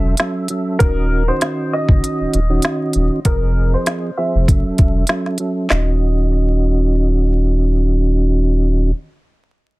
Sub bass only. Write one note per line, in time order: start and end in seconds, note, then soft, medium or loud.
0.00 0.14 E1 medium
0.81 1.30 D#1 loud
1.89 2.00 F#1 medium
2.21 2.26 D#1 soft
2.34 2.59 D#1 medium
2.96 3.09 D#1 loud
3.26 3.75 F1 loud
4.35 4.46 F1 medium
4.49 4.62 F#1 loud
4.66 4.71 E1 soft
4.79 5.04 E1 medium
5.71 8.91 D#1 medium